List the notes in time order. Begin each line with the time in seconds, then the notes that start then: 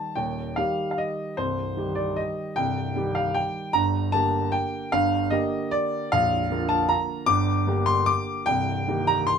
Already playing: D#3 G3 G4 A5
0.15 D#1 D#2 G5
0.56 D#3 G3 G4 F5
0.91 F5
0.98 D#5
1.37 C1 C2 C5
1.77 D#3 G3 G4
1.95 D5
2.16 D#5
2.56 C1 C2 G5
2.96 D#3 G3 G4
3.15 F5
3.34 G5
3.73 G1 G2 A#5
4.12 D3 A#3 G4 A5
4.52 G5
4.92 G1 G2 F5
5.30 D3 A#3 G4 D#5
5.71 D5
6.12 A#0 A#1 F5
6.51 D3 A#3 F4
6.69 A5
6.89 A#5
7.26 G1 G2 D6
7.67 D3 A#3 G4
7.86 C6
8.06 D6
8.46 C1 C2 G5
8.88 D#3 A#3 G4
9.07 A#5
9.27 C6